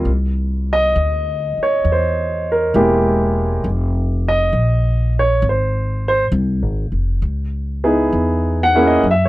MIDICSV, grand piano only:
0, 0, Header, 1, 2, 480
1, 0, Start_track
1, 0, Tempo, 896861
1, 31, Time_signature, 4, 2, 24, 8
1, 4970, End_track
2, 0, Start_track
2, 0, Title_t, "Grand piano"
2, 0, Program_c, 0, 0
2, 0, Control_c, 0, 64, 127
2, 38, Control_c, 0, 64, 0
2, 123, Control_c, 0, 64, 127
2, 389, Note_on_c, 0, 75, 80
2, 833, Note_off_c, 0, 75, 0
2, 871, Note_on_c, 0, 73, 63
2, 1003, Note_off_c, 0, 73, 0
2, 1029, Note_on_c, 0, 72, 56
2, 1329, Note_off_c, 0, 72, 0
2, 1347, Note_on_c, 0, 70, 60
2, 1472, Note_on_c, 0, 56, 51
2, 1473, Note_on_c, 0, 64, 48
2, 1476, Note_on_c, 0, 58, 47
2, 1476, Note_on_c, 0, 67, 59
2, 1481, Note_off_c, 0, 70, 0
2, 1950, Note_off_c, 0, 56, 0
2, 1951, Note_off_c, 0, 64, 0
2, 1952, Note_off_c, 0, 58, 0
2, 1952, Note_off_c, 0, 67, 0
2, 1957, Control_c, 0, 64, 0
2, 2293, Note_on_c, 0, 75, 78
2, 2741, Note_off_c, 0, 75, 0
2, 2779, Note_on_c, 0, 73, 68
2, 2913, Note_off_c, 0, 73, 0
2, 2939, Note_on_c, 0, 72, 56
2, 3239, Note_off_c, 0, 72, 0
2, 3255, Note_on_c, 0, 72, 74
2, 3339, Note_off_c, 0, 72, 0
2, 3972, Control_c, 0, 64, 127
2, 4195, Note_on_c, 0, 59, 47
2, 4196, Note_on_c, 0, 68, 60
2, 4197, Note_on_c, 0, 63, 46
2, 4198, Note_on_c, 0, 64, 46
2, 4333, Note_off_c, 0, 59, 0
2, 4333, Note_off_c, 0, 68, 0
2, 4334, Note_off_c, 0, 63, 0
2, 4334, Note_off_c, 0, 64, 0
2, 4620, Note_on_c, 0, 78, 82
2, 4684, Note_on_c, 0, 61, 52
2, 4684, Note_on_c, 0, 64, 53
2, 4686, Note_on_c, 0, 68, 59
2, 4689, Note_on_c, 0, 58, 56
2, 4723, Note_off_c, 0, 78, 0
2, 4749, Note_on_c, 0, 75, 64
2, 4820, Note_off_c, 0, 61, 0
2, 4820, Note_off_c, 0, 64, 0
2, 4820, Note_off_c, 0, 68, 0
2, 4822, Note_off_c, 0, 58, 0
2, 4826, Note_off_c, 0, 75, 0
2, 4838, Control_c, 0, 64, 0
2, 4874, Note_on_c, 0, 76, 73
2, 4946, Control_c, 0, 64, 127
2, 4953, Note_on_c, 0, 73, 55
2, 4960, Note_off_c, 0, 76, 0
2, 4970, Note_off_c, 0, 73, 0
2, 4970, End_track
0, 0, End_of_file